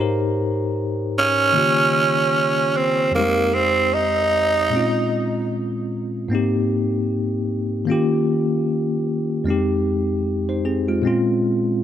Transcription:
0.00 1.51 G#2 medium
0.00 1.53 D#4 medium
0.00 1.54 G4 medium
0.00 1.55 A#4 medium
0.00 1.52 C5 medium
0.00 0.19 C#5 soft
0.00 0.19 A#5 medium
1.18 2.78 C#4 loud
1.53 3.11 C#3 medium
1.53 3.09 D#3 medium
1.53 3.10 A#3 medium
1.57 3.12 F4 medium
1.57 3.12 G4 medium
2.76 3.14 C4 medium
3.11 4.68 F2 medium
3.11 3.21 G3 soft
3.11 3.55 A#3 loud
3.11 4.70 C4 medium
3.16 4.70 G#3 medium
3.16 4.70 D#4 medium
3.16 4.71 G4 medium
3.54 3.95 C4 medium
3.94 5.52 D#4 loud
4.70 6.26 A#2 medium
4.70 6.27 G#3 medium
4.70 6.28 C4 medium
4.74 6.28 C#4 medium
4.74 6.29 F4 medium
6.29 7.84 G#2 medium
6.29 7.85 A#3 medium
6.29 7.86 C4 medium
6.33 7.87 D#4 medium
6.33 7.88 G4 medium
7.85 9.42 D#3 medium
7.85 9.43 A#3 medium
7.85 9.43 C#4 medium
7.90 9.44 F4 medium
7.90 9.45 G4 medium
9.44 11.00 F2 medium
9.44 10.23 G#3 medium
9.44 10.24 C4 medium
9.48 10.25 D#4 medium
9.48 10.26 G4 medium
10.49 10.65 D#4 medium
10.49 10.65 C5 medium
10.65 10.87 C4 medium
10.65 10.86 G#4 medium
10.88 11.02 G#3 medium
10.88 11.06 F4 medium
11.02 11.84 A#2 medium
11.02 11.84 G#3 medium
11.02 11.43 C4 medium
11.06 11.44 C#4 medium
11.06 11.45 F4 medium

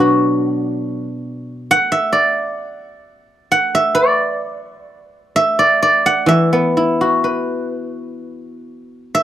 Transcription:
0.00 1.71 B2 soft
0.00 1.07 F#3 soft
0.00 1.28 B3 soft
0.00 1.50 D4 soft
0.00 1.73 F#4 soft
0.00 1.18 B4 medium
0.00 0.52 D5 medium
0.00 0.17 E5 medium
1.71 3.31 F#5 loud
1.92 3.64 E5 medium
2.13 3.94 D5 medium
3.52 5.12 F#5 medium
3.75 5.35 E5 medium
3.95 5.58 D5 medium
5.36 6.28 E5 medium
5.59 5.82 D5 medium
5.82 7.18 D5 medium
6.06 7.66 F#5 medium
6.26 9.15 E3 soft
6.26 7.01 E5 medium
6.53 8.45 B3 soft
6.77 8.68 E4 soft
7.01 8.92 F#4 soft
7.01 7.18 D#5 medium
7.18 8.01 D5 medium
7.24 9.15 B4 soft
9.15 9.23 E5 medium

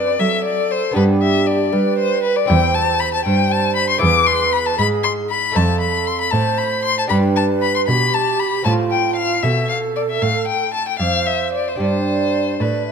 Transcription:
0.00 0.16 F#2 medium
0.00 0.16 F#2 soft
0.00 0.90 C4 soft
0.00 0.91 D4 soft
0.00 0.91 A4 soft
0.00 0.22 B4 medium
0.00 0.21 D5 medium
0.19 0.92 F#3 soft
0.19 0.92 F#3 medium
0.19 0.97 A4 medium
0.19 0.44 E5 medium
0.44 0.73 D5 medium
0.71 0.95 C5 medium
0.91 2.43 B3 soft
0.91 2.44 D4 soft
0.91 2.45 G4 soft
0.95 1.69 G2 soft
0.95 1.69 G2 medium
0.95 1.74 G4 medium
0.95 1.04 B4 medium
1.22 1.48 E5 medium
1.47 1.98 D5 medium
1.72 2.45 G3 soft
1.72 2.46 G3 medium
1.72 2.49 B4 medium
1.99 2.23 C5 medium
2.23 2.38 B4 medium
2.36 2.49 D5 medium
2.45 3.97 C4 soft
2.45 3.98 E4 soft
2.45 3.98 G4 soft
2.45 2.76 G5 medium
2.49 3.22 E2 medium
2.49 3.24 C5 medium
2.74 3.01 A5 medium
3.00 3.13 B5 medium
3.14 3.25 A5 medium
3.25 3.98 G2 medium
3.25 3.99 G2 medium
3.25 4.01 C5 medium
3.25 3.53 G5 medium
3.51 3.75 A5 medium
3.76 3.89 B5 medium
3.90 4.01 C6 medium
3.98 5.50 B3 soft
3.98 5.51 E4 soft
3.98 5.52 G#4 soft
3.98 4.28 D6 medium
4.02 4.75 E2 medium
4.02 4.78 B4 medium
4.27 4.54 C6 medium
4.53 4.68 B5 medium
4.66 4.78 A5 medium
4.79 5.52 G#2 medium
4.79 5.53 G#2 soft
4.79 5.29 G#4 medium
4.79 4.87 B5 medium
5.04 5.12 C6 medium
5.30 5.57 B5 medium
5.52 7.05 A3 soft
5.52 7.05 A4 soft
5.52 7.06 C5 soft
5.56 6.29 F2 medium
5.56 6.35 A4 medium
5.56 5.80 A5 medium
5.81 6.08 B5 medium
6.07 6.20 C6 medium
6.21 6.33 B5 medium
6.31 7.07 A2 medium
6.31 7.11 C5 medium
6.31 6.60 A5 medium
6.58 6.84 B5 medium
6.85 6.98 C6 medium
6.98 7.04 A5 medium
7.07 7.85 G2 medium
7.07 8.60 D4 soft
7.07 8.61 G4 soft
7.07 8.62 B4 soft
7.07 7.17 B5 medium
7.11 7.85 G2 medium
7.11 7.91 B4 medium
7.36 7.44 A5 medium
7.62 7.75 B5 medium
7.75 7.81 C6 medium
7.88 8.62 B2 medium
7.88 8.62 B2 soft
7.88 8.66 G4 medium
7.88 8.15 B5 medium
8.14 8.41 A5 medium
8.39 8.64 B5 medium
8.63 9.40 A2 medium
8.63 11.75 C4 soft
8.63 11.75 F4 soft
8.63 9.46 F4 medium
8.63 11.76 C5 soft
8.63 8.73 A5 medium
8.67 9.40 A2 soft
8.91 9.16 G5 medium
9.16 9.44 F5 medium
9.43 10.18 B2 medium
9.43 10.18 B2 soft
9.43 10.71 A4 medium
9.43 9.69 E5 medium
9.69 9.77 F5 medium
9.96 10.01 D5 medium
10.10 10.24 E5 medium
10.22 10.96 A2 soft
10.22 10.96 A2 medium
10.22 10.47 F5 medium
10.48 10.73 G5 medium
10.74 10.87 A5 medium
10.88 10.99 G5 medium
10.99 11.76 F2 soft
10.99 11.79 C5 medium
10.99 11.28 F5 medium
11.26 11.53 E5 medium
11.53 11.70 D5 medium
11.68 11.80 C5 medium
11.76 12.57 G2 medium
11.76 12.92 D4 soft
11.76 12.92 G4 soft
11.80 12.57 G2 soft
11.80 12.63 C5 medium
11.80 12.54 D5 medium
12.60 12.92 A2 soft
12.60 12.92 A2 medium
12.60 12.92 B4 medium
12.60 12.86 D5 medium
12.88 12.92 E5 soft

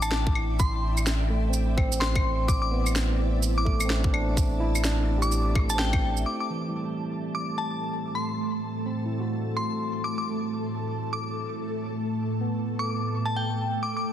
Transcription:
0.00 6.25 A1 medium
0.00 1.49 C4 medium
0.00 0.77 D4 soft
0.00 6.23 E4 medium
0.00 6.22 D5 medium
0.00 6.23 E5 medium
0.00 2.45 G5 medium
0.00 0.27 A5 medium
0.00 claves soft
0.00 shaker medium
0.12 snare loud
0.27 kick loud
0.35 claves soft
0.59 0.85 C6 medium
0.59 kick loud
0.59 shaker medium
0.97 claves soft
0.97 shaker medium
1.07 snare loud
1.07 shaker medium
1.30 2.66 A3 medium
1.49 1.76 C4 medium
1.53 shaker medium
1.77 3.13 C4 medium
1.77 kick loud
1.77 claves soft
1.92 shaker medium
2.00 2.68 C6 medium
2.00 snare loud
2.16 kick loud
2.16 claves medium
2.48 6.22 A5 medium
2.48 2.57 D6 medium
2.48 kick loud
2.48 shaker medium
2.62 2.68 D6 medium
2.72 4.07 B3 medium
2.86 claves soft
2.86 shaker medium
2.96 snare loud
2.96 shaker medium
3.43 shaker medium
3.58 3.78 D6 medium
3.65 5.01 A3 medium
3.65 kick medium
3.80 claves medium
3.80 shaker medium
3.85 5.17 C4 medium
3.90 snare loud
4.00 4.12 D4 medium
4.00 kick loud
4.13 4.83 D4 medium
4.13 claves medium
4.37 kick loud
4.37 shaker medium
4.60 5.96 E4 medium
4.75 claves soft
4.75 shaker medium
4.84 6.20 D4 medium
4.84 snare loud
4.84 shaker medium
5.18 6.49 G4 medium
5.22 5.47 D6 medium
5.22 shaker soft
5.32 shaker medium
5.55 6.46 A3 medium
5.55 kick loud
5.55 claves soft
5.70 5.77 A5 medium
5.70 shaker medium
5.74 6.63 C4 medium
5.79 6.26 G5 loud
5.79 snare loud
5.93 kick loud
5.93 claves medium
6.17 shaker soft
6.26 13.78 A2 medium
6.26 13.78 A3 medium
6.26 14.13 A4 medium
6.26 13.78 A5 medium
6.26 6.35 D6 medium
6.40 6.47 D6 medium
6.50 7.86 E3 soft
6.69 8.01 G3 soft
7.35 7.56 D6 medium
7.58 7.83 A5 medium
8.15 8.40 C6 medium
8.86 10.22 C4 medium
9.06 10.37 E4 soft
9.20 10.50 F#4 soft
9.57 10.24 C6 medium
10.04 10.13 D6 medium
10.18 10.24 D6 medium
11.13 11.34 D6 medium
12.41 13.76 B3 medium
12.79 13.03 D6 medium
13.26 13.33 A5 medium
13.36 13.89 G5 medium
13.82 14.13 A3 medium
13.82 14.13 D4 medium
13.82 14.13 E4 medium
13.82 13.92 D6 medium
13.97 14.03 D6 medium

